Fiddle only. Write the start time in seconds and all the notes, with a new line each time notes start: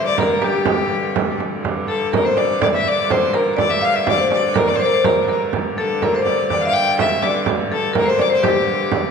0.06 D5
0.18 A#4
0.41 G4
1.88 A4
2.13 A#4
2.25 C5
2.37 D5
2.62 D5
2.74 E5
2.88 D5
3.11 C5
3.35 A#4
3.57 D5
3.70 E5
3.84 F5
3.95 E5
4.08 D5
4.32 D5
4.57 A#4
4.68 D5
4.75 C5
4.82 D5
5.05 A#4
5.28 A#4
5.77 A4
6.02 A#4
6.13 C5
6.23 D5
6.48 D5
6.61 F5
6.67 F5
6.73 G5
6.98 E5
7.22 D5
7.73 A4
7.96 A#4
8.09 C5
8.21 D5
8.33 C5
8.43 G4